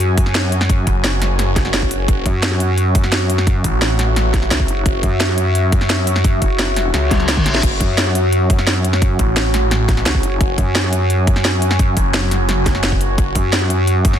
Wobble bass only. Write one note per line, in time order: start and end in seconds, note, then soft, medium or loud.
0.00 0.85 F#2 loud
2.26 3.63 F#2 loud
4.51 4.67 C#2 loud
4.68 4.84 F#1 loud
5.03 6.40 F#2 medium
6.42 6.92 F#1 medium
6.94 7.44 C#2 loud
7.46 7.62 A1 loud
7.81 9.18 F#2 medium
10.06 10.22 C#2 medium
10.23 10.39 F#1 loud
10.58 11.95 F#2 medium
13.35 14.19 F#2 loud